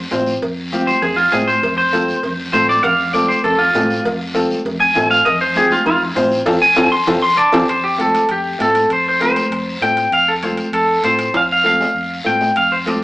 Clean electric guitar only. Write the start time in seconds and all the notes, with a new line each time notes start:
0.87 C5
1.02 G#4
1.16 F4
1.32 G#4
1.48 C5
1.78 C5
2.53 C5
2.69 D5
2.83 F5
3.14 D5
3.29 C5
3.44 A4
3.59 F4
4.80 G#5
5.11 F5
5.25 D#5
5.41 C5
5.57 G#4
5.72 F4
5.87 F4
6.62 G#5
6.92 C6
7.22 C6
7.37 D5 A5
7.69 C5
7.84 G4
8.01 A4
8.31 G4
8.62 A4
8.93 C5
9.08 C5
9.22 C5
9.82 G5
10.13 F5
10.28 A4
10.43 C5
10.74 A4
11.04 C5
11.37 F5
11.52 F5
11.66 F5
12.26 G5
12.57 F5
12.72 C5
12.87 D5